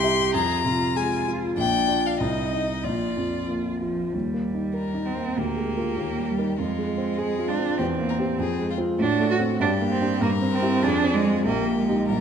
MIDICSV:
0, 0, Header, 1, 4, 480
1, 0, Start_track
1, 0, Key_signature, -3, "major"
1, 0, Tempo, 618557
1, 271, Time_signature, 2, 2, 24, 8
1, 1715, Tempo, 643777
1, 3155, Tempo, 617920
1, 4115, Tempo, 605449
1, 7955, Tempo, 624350
1, 9480, End_track
2, 0, Start_track
2, 0, Title_t, "Violin"
2, 0, Program_c, 0, 40
2, 0, Note_on_c, 0, 84, 76
2, 262, Note_off_c, 0, 84, 0
2, 266, Note_on_c, 0, 82, 78
2, 746, Note_on_c, 0, 80, 66
2, 758, Note_off_c, 0, 82, 0
2, 988, Note_off_c, 0, 80, 0
2, 1225, Note_on_c, 0, 79, 77
2, 1601, Note_on_c, 0, 77, 59
2, 1612, Note_off_c, 0, 79, 0
2, 1707, Note_off_c, 0, 77, 0
2, 1712, Note_on_c, 0, 75, 53
2, 2186, Note_on_c, 0, 74, 50
2, 2197, Note_off_c, 0, 75, 0
2, 2672, Note_off_c, 0, 74, 0
2, 3633, Note_on_c, 0, 70, 43
2, 4118, Note_on_c, 0, 67, 47
2, 4130, Note_off_c, 0, 70, 0
2, 5075, Note_on_c, 0, 65, 42
2, 5087, Note_off_c, 0, 67, 0
2, 5543, Note_on_c, 0, 68, 47
2, 5555, Note_off_c, 0, 65, 0
2, 5792, Note_on_c, 0, 65, 50
2, 5804, Note_off_c, 0, 68, 0
2, 6020, Note_off_c, 0, 65, 0
2, 6025, Note_on_c, 0, 67, 52
2, 6088, Note_off_c, 0, 67, 0
2, 6267, Note_on_c, 0, 70, 49
2, 6330, Note_off_c, 0, 70, 0
2, 6509, Note_on_c, 0, 68, 57
2, 6743, Note_off_c, 0, 68, 0
2, 6752, Note_on_c, 0, 65, 50
2, 6816, Note_off_c, 0, 65, 0
2, 6990, Note_on_c, 0, 66, 58
2, 7463, Note_off_c, 0, 66, 0
2, 7477, Note_on_c, 0, 67, 66
2, 7952, Note_on_c, 0, 70, 70
2, 7964, Note_off_c, 0, 67, 0
2, 8428, Note_on_c, 0, 68, 63
2, 8439, Note_off_c, 0, 70, 0
2, 8902, Note_off_c, 0, 68, 0
2, 8907, Note_on_c, 0, 67, 62
2, 9380, Note_off_c, 0, 67, 0
2, 9385, Note_on_c, 0, 70, 53
2, 9480, Note_off_c, 0, 70, 0
2, 9480, End_track
3, 0, Start_track
3, 0, Title_t, "Cello"
3, 0, Program_c, 1, 42
3, 0, Note_on_c, 1, 67, 66
3, 259, Note_on_c, 1, 68, 58
3, 270, Note_off_c, 1, 67, 0
3, 495, Note_off_c, 1, 68, 0
3, 500, Note_on_c, 1, 65, 55
3, 1210, Note_off_c, 1, 65, 0
3, 1218, Note_on_c, 1, 62, 53
3, 1699, Note_off_c, 1, 62, 0
3, 1710, Note_on_c, 1, 63, 52
3, 2182, Note_on_c, 1, 65, 42
3, 2193, Note_off_c, 1, 63, 0
3, 2903, Note_off_c, 1, 65, 0
3, 2908, Note_on_c, 1, 53, 45
3, 3146, Note_on_c, 1, 55, 52
3, 3157, Note_off_c, 1, 53, 0
3, 3867, Note_on_c, 1, 60, 50
3, 3879, Note_off_c, 1, 55, 0
3, 4112, Note_on_c, 1, 58, 49
3, 4124, Note_off_c, 1, 60, 0
3, 4837, Note_on_c, 1, 55, 52
3, 4849, Note_off_c, 1, 58, 0
3, 5064, Note_off_c, 1, 55, 0
3, 5068, Note_on_c, 1, 56, 61
3, 5783, Note_on_c, 1, 62, 68
3, 5795, Note_off_c, 1, 56, 0
3, 6017, Note_on_c, 1, 60, 58
3, 6029, Note_off_c, 1, 62, 0
3, 6743, Note_off_c, 1, 60, 0
3, 6986, Note_on_c, 1, 62, 76
3, 7211, Note_off_c, 1, 62, 0
3, 7231, Note_on_c, 1, 66, 75
3, 7295, Note_off_c, 1, 66, 0
3, 7473, Note_on_c, 1, 62, 91
3, 7536, Note_off_c, 1, 62, 0
3, 7711, Note_on_c, 1, 60, 74
3, 7947, Note_off_c, 1, 60, 0
3, 7953, Note_on_c, 1, 58, 69
3, 8015, Note_off_c, 1, 58, 0
3, 8185, Note_on_c, 1, 60, 74
3, 8422, Note_on_c, 1, 62, 85
3, 8434, Note_off_c, 1, 60, 0
3, 8657, Note_on_c, 1, 56, 79
3, 8669, Note_off_c, 1, 62, 0
3, 8897, Note_off_c, 1, 56, 0
3, 8902, Note_on_c, 1, 58, 70
3, 9142, Note_off_c, 1, 58, 0
3, 9146, Note_on_c, 1, 56, 59
3, 9384, Note_on_c, 1, 55, 66
3, 9396, Note_off_c, 1, 56, 0
3, 9480, Note_off_c, 1, 55, 0
3, 9480, End_track
4, 0, Start_track
4, 0, Title_t, "Grand piano"
4, 0, Program_c, 2, 0
4, 0, Control_c, 2, 64, 127
4, 0, Note_on_c, 2, 36, 54
4, 27, Note_on_c, 2, 67, 36
4, 28, Note_on_c, 2, 76, 44
4, 244, Note_off_c, 2, 67, 0
4, 244, Note_off_c, 2, 76, 0
4, 255, Note_off_c, 2, 36, 0
4, 264, Note_on_c, 2, 41, 57
4, 285, Control_c, 2, 64, 0
4, 398, Control_c, 2, 64, 127
4, 503, Note_on_c, 2, 48, 39
4, 744, Note_on_c, 2, 56, 41
4, 890, Note_off_c, 2, 48, 0
4, 994, Note_on_c, 2, 65, 44
4, 1131, Note_off_c, 2, 56, 0
4, 1197, Note_off_c, 2, 41, 0
4, 1223, Note_on_c, 2, 34, 53
4, 1232, Note_off_c, 2, 65, 0
4, 1245, Control_c, 2, 64, 0
4, 1353, Control_c, 2, 64, 127
4, 1460, Note_on_c, 2, 65, 37
4, 1464, Note_on_c, 2, 74, 39
4, 1684, Note_off_c, 2, 65, 0
4, 1686, Note_off_c, 2, 74, 0
4, 1697, Note_off_c, 2, 34, 0
4, 1709, Note_on_c, 2, 36, 48
4, 1729, Control_c, 2, 64, 0
4, 1860, Control_c, 2, 64, 127
4, 1954, Note_on_c, 2, 63, 31
4, 1956, Note_on_c, 2, 75, 34
4, 2169, Note_off_c, 2, 63, 0
4, 2170, Note_off_c, 2, 75, 0
4, 2174, Note_off_c, 2, 36, 0
4, 2186, Note_on_c, 2, 34, 38
4, 2206, Control_c, 2, 64, 0
4, 2320, Control_c, 2, 64, 127
4, 2430, Note_on_c, 2, 41, 32
4, 2668, Note_on_c, 2, 58, 26
4, 2818, Note_off_c, 2, 41, 0
4, 2912, Note_on_c, 2, 65, 29
4, 3057, Note_off_c, 2, 58, 0
4, 3122, Note_off_c, 2, 34, 0
4, 3145, Note_on_c, 2, 39, 36
4, 3151, Note_off_c, 2, 65, 0
4, 3167, Control_c, 2, 64, 0
4, 3307, Control_c, 2, 64, 127
4, 3307, Note_on_c, 2, 58, 29
4, 3465, Note_on_c, 2, 63, 30
4, 3565, Note_off_c, 2, 58, 0
4, 3617, Note_on_c, 2, 70, 31
4, 3725, Note_off_c, 2, 63, 0
4, 3777, Note_on_c, 2, 63, 33
4, 3882, Note_off_c, 2, 70, 0
4, 3949, Note_on_c, 2, 58, 30
4, 4042, Note_off_c, 2, 63, 0
4, 4080, Note_off_c, 2, 39, 0
4, 4111, Note_off_c, 2, 58, 0
4, 4111, Note_on_c, 2, 38, 38
4, 4129, Control_c, 2, 64, 0
4, 4241, Control_c, 2, 64, 127
4, 4263, Note_on_c, 2, 56, 30
4, 4429, Note_on_c, 2, 70, 32
4, 4433, Note_on_c, 2, 65, 31
4, 4525, Note_off_c, 2, 56, 0
4, 4576, Note_off_c, 2, 70, 0
4, 4578, Note_off_c, 2, 65, 0
4, 4579, Note_off_c, 2, 38, 0
4, 4584, Note_on_c, 2, 39, 38
4, 4609, Control_c, 2, 64, 0
4, 4749, Note_on_c, 2, 55, 35
4, 4757, Control_c, 2, 64, 127
4, 4910, Note_on_c, 2, 63, 31
4, 4915, Note_on_c, 2, 70, 36
4, 5006, Note_off_c, 2, 55, 0
4, 5052, Note_off_c, 2, 39, 0
4, 5054, Note_off_c, 2, 63, 0
4, 5057, Note_off_c, 2, 70, 0
4, 5070, Note_on_c, 2, 41, 42
4, 5088, Control_c, 2, 64, 0
4, 5221, Control_c, 2, 64, 127
4, 5232, Note_on_c, 2, 56, 37
4, 5383, Note_on_c, 2, 60, 40
4, 5484, Note_off_c, 2, 56, 0
4, 5546, Note_on_c, 2, 68, 39
4, 5641, Note_off_c, 2, 60, 0
4, 5709, Note_on_c, 2, 65, 43
4, 5804, Note_off_c, 2, 68, 0
4, 5867, Note_on_c, 2, 60, 36
4, 5966, Note_off_c, 2, 65, 0
4, 5999, Note_off_c, 2, 41, 0
4, 6029, Note_off_c, 2, 60, 0
4, 6029, Note_on_c, 2, 40, 53
4, 6044, Control_c, 2, 64, 0
4, 6187, Note_on_c, 2, 58, 43
4, 6191, Control_c, 2, 64, 127
4, 6345, Note_on_c, 2, 60, 40
4, 6347, Note_on_c, 2, 67, 47
4, 6445, Note_off_c, 2, 58, 0
4, 6491, Note_off_c, 2, 60, 0
4, 6492, Note_off_c, 2, 67, 0
4, 6495, Note_off_c, 2, 40, 0
4, 6501, Note_on_c, 2, 41, 54
4, 6523, Control_c, 2, 64, 0
4, 6644, Control_c, 2, 64, 127
4, 6664, Note_on_c, 2, 56, 46
4, 6811, Note_on_c, 2, 60, 42
4, 6815, Note_on_c, 2, 65, 46
4, 6922, Note_off_c, 2, 56, 0
4, 6963, Note_off_c, 2, 60, 0
4, 6965, Note_off_c, 2, 65, 0
4, 6970, Note_off_c, 2, 41, 0
4, 6976, Note_on_c, 2, 45, 55
4, 7004, Control_c, 2, 64, 0
4, 7121, Control_c, 2, 64, 127
4, 7145, Note_on_c, 2, 57, 50
4, 7302, Note_on_c, 2, 60, 44
4, 7303, Note_on_c, 2, 66, 51
4, 7405, Note_off_c, 2, 57, 0
4, 7451, Note_off_c, 2, 45, 0
4, 7451, Note_off_c, 2, 60, 0
4, 7451, Note_off_c, 2, 66, 0
4, 7464, Note_on_c, 2, 43, 59
4, 7487, Control_c, 2, 64, 0
4, 7616, Control_c, 2, 64, 127
4, 7630, Note_on_c, 2, 58, 49
4, 7790, Note_on_c, 2, 62, 42
4, 7790, Note_on_c, 2, 67, 47
4, 7888, Note_off_c, 2, 58, 0
4, 7933, Note_off_c, 2, 43, 0
4, 7935, Note_off_c, 2, 62, 0
4, 7936, Note_off_c, 2, 67, 0
4, 7945, Note_on_c, 2, 43, 64
4, 7967, Control_c, 2, 64, 0
4, 8097, Control_c, 2, 64, 127
4, 8108, Note_on_c, 2, 60, 47
4, 8263, Note_on_c, 2, 64, 46
4, 8264, Note_on_c, 2, 67, 51
4, 8362, Note_off_c, 2, 60, 0
4, 8408, Note_off_c, 2, 43, 0
4, 8408, Note_off_c, 2, 64, 0
4, 8408, Note_off_c, 2, 67, 0
4, 8427, Note_on_c, 2, 41, 56
4, 8441, Control_c, 2, 64, 0
4, 8544, Control_c, 2, 64, 127
4, 8584, Note_on_c, 2, 60, 43
4, 8743, Note_on_c, 2, 65, 41
4, 8743, Note_on_c, 2, 68, 43
4, 8844, Note_off_c, 2, 60, 0
4, 8890, Note_off_c, 2, 65, 0
4, 8891, Note_off_c, 2, 68, 0
4, 8895, Note_off_c, 2, 41, 0
4, 8899, Note_on_c, 2, 34, 57
4, 8925, Control_c, 2, 64, 0
4, 9063, Note_on_c, 2, 58, 44
4, 9070, Control_c, 2, 64, 127
4, 9238, Note_on_c, 2, 63, 40
4, 9241, Note_on_c, 2, 67, 43
4, 9325, Note_off_c, 2, 58, 0
4, 9373, Note_off_c, 2, 34, 0
4, 9381, Note_off_c, 2, 63, 0
4, 9382, Note_off_c, 2, 67, 0
4, 9394, Note_on_c, 2, 34, 52
4, 9408, Control_c, 2, 64, 0
4, 9480, Note_off_c, 2, 34, 0
4, 9480, End_track
0, 0, End_of_file